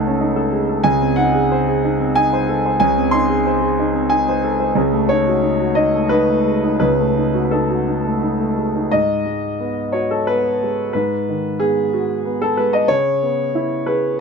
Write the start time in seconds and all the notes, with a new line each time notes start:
Already playing: C#2 C#3 A3 D#4 A4 F#5
0.07 C#4
0.21 D#4
0.36 A4
0.53 G#4
0.69 A4
0.83 C#2 C#3 G#5
1.01 C4
1.16 D#4 F#5
1.35 G#4
1.52 C5
1.68 G#4
1.84 D#4
2.00 C4
2.15 D#4 G#5
2.33 C5
2.49 A4
2.66 C5
2.80 C#2 C#3 G#5
2.98 C4
3.11 D#4 C6
3.29 G#4
3.46 C5
3.61 G#4
3.80 D#4
3.94 C4
4.10 D#4 G#5
4.29 C5
4.44 A4
4.60 C5
4.75 C#2 C#3
4.93 A3
5.09 D#4 C#5
5.27 F#4
5.43 D#4
5.60 F#4
5.75 D#4 D#5
5.93 A3
6.09 D#4 B4
6.29 A3
6.45 G#3
6.64 D#4
6.80 C#2 C#3 B4
6.99 A3
7.17 D#4
7.34 F#4
7.45 B4
7.51 D#4 A4
7.70 F#4
7.87 D#4
8.04 A3
8.22 D#4
8.40 A3
8.57 G#3
8.75 D#4
8.91 G#2 D#5
9.26 G#3
9.60 B3
9.92 F#4 C#5
10.11 A4
10.27 B3 B4
10.63 G#3
10.93 G#2 B4
11.29 D#3
11.60 B3 G#4
11.93 F#4
12.26 B3
12.42 A4
12.57 G#3 B4
12.73 D#5
12.88 C#3 C#5
13.22 B3
13.55 E4
13.86 G#4 B4